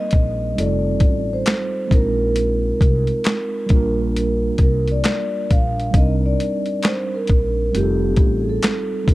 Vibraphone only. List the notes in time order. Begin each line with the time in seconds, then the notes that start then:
0.00 D#5
0.59 D5
1.33 C5
1.94 A#4
4.63 A#4
4.92 D5
5.52 F5
5.96 D#5
6.26 D5
6.86 C5
7.15 A#4
7.76 G4
8.41 G#4
8.49 A4
9.10 A#4